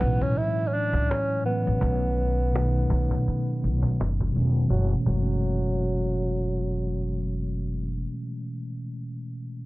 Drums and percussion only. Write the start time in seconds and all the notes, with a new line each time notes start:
0.01 cajon bass
0.22 cajon bass
0.37 cajon slap
0.71 cajon slap
0.93 cajon bass
1.11 cajon slap
1.44 cajon slap
1.81 cajon bass
2.18 cajon slap
2.56 cajon slap
2.90 cajon bass
3.11 cajon bass
3.27 cajon slap
3.61 cajon slap
3.83 cajon bass
4.01 cajon slap
4.21 cajon bass
4.33 cajon slap
4.70 cajon bass
5.06 cajon bass